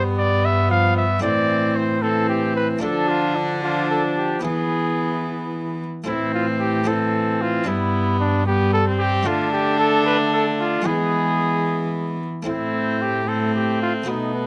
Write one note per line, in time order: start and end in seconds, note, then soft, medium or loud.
0.00 1.19 G2 medium
0.00 1.23 G2 medium
0.00 0.72 G3 medium
0.00 1.21 B3 medium
0.18 0.46 D5 loud
0.45 0.70 E5 loud
0.70 1.05 F3 medium
0.70 0.96 F5 loud
0.97 1.22 E5 loud
1.20 2.79 A2 medium
1.20 2.77 A3 medium
1.20 2.78 C4 medium
1.20 2.78 E4 medium
1.20 1.77 D5 loud
1.24 2.80 A2 medium
1.24 1.99 E3 medium
1.24 2.02 C4 medium
1.76 2.04 C5 medium
2.02 2.81 E3 medium
2.02 2.81 C4 medium
2.02 2.28 A4 loud
2.29 2.55 G4 medium
2.56 2.68 B4 loud
2.79 4.41 D3 medium
2.79 3.59 F3 medium
2.79 4.39 A3 medium
2.79 4.39 D4 medium
2.79 4.40 F4 medium
2.79 3.10 A4 medium
2.83 4.41 D3 medium
2.83 3.60 D4 medium
3.08 3.37 F4 medium
3.36 3.62 D4 medium
3.63 4.46 F3 medium
3.63 4.43 D4 medium
3.63 3.90 F4 medium
3.91 4.03 A4 medium
4.17 4.43 G4 medium
4.41 5.80 E3 medium
4.41 5.83 E3 medium
4.41 6.01 B3 medium
4.41 5.84 B3 medium
4.41 6.02 E4 medium
4.41 5.77 G#4 medium
4.45 5.84 E3 medium
6.04 7.63 A2 medium
6.04 7.64 A2 medium
6.04 6.84 E3 medium
6.04 6.83 A3 medium
6.04 6.84 C4 medium
6.04 6.85 E4 medium
6.04 6.32 E4 medium
6.34 6.46 F4 medium
6.60 6.89 G4 loud
6.84 7.70 E3 medium
6.84 7.63 A3 medium
6.84 7.64 C4 medium
6.84 7.64 E4 medium
6.84 7.43 A4 medium
6.88 7.69 C4 medium
7.42 7.69 F4 loud
7.64 9.22 G2 medium
7.64 9.23 G2 medium
7.64 8.47 B3 medium
7.64 9.21 D4 medium
7.64 8.19 E4 medium
7.64 9.22 G4 medium
7.64 9.21 B4 medium
7.68 8.46 G3 medium
8.20 8.46 D4 loud
8.46 9.28 G3 medium
8.46 8.86 B3 medium
8.46 8.73 G4 loud
8.73 8.85 A4 loud
8.87 9.28 C4 medium
8.98 9.28 G4 loud
9.23 10.82 D3 medium
9.23 10.80 A3 medium
9.23 10.85 A3 medium
9.23 10.81 D4 medium
9.23 10.86 D4 medium
9.23 10.81 F4 medium
9.23 9.52 F4 loud
9.27 10.83 D3 medium
9.52 9.79 G4 loud
9.79 10.05 A4 loud
10.06 10.18 B4 loud
10.33 10.45 A4 medium
10.60 10.87 F4 loud
10.82 12.23 E3 medium
10.82 12.41 G#3 medium
10.82 12.17 G#3 medium
10.82 12.42 B3 medium
10.82 12.42 E4 medium
10.82 12.20 G#4 loud
10.86 12.24 E3 medium
10.86 12.24 B3 medium
12.43 14.03 A2 medium
12.43 14.01 A3 medium
12.43 14.02 C4 medium
12.43 14.02 E4 medium
12.47 14.03 A2 medium
12.47 13.24 A3 medium
12.47 13.24 C4 medium
12.47 13.03 E4 medium
13.02 13.30 G4 loud
13.28 14.06 A3 medium
13.28 14.10 C4 medium
13.28 13.54 A4 medium
13.55 13.81 G4 medium
13.82 13.93 F4 loud
14.04 14.47 B2 medium
14.04 14.47 A3 medium
14.04 14.47 B3 medium
14.04 14.47 F#4 medium
14.08 14.47 B2 medium
14.08 14.47 B3 medium
14.08 14.33 D#4 medium
14.34 14.47 B3 medium